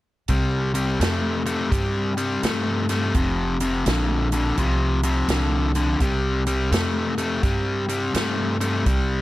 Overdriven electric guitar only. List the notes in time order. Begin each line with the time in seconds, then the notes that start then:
0.29 C3 G3
0.74 C3 G3
1.00 C3 A3
1.46 C3 A3
1.71 C3 G3
2.17 C3 G3
2.43 C3 A3
2.89 C3 A3
3.15 F2 C3
3.61 F2 C3
3.87 F2 D3
4.33 F2 D3
4.58 F2 C3
5.04 F2 C3
5.29 F2 D3
5.75 F2 D3
6.02 C3 G3
6.47 C3 G3
6.72 C3 A3
7.18 C3 A3
7.43 C3 G3
7.89 C3 G3
8.14 C3 A3
8.61 C3 A3
8.86 C3 G3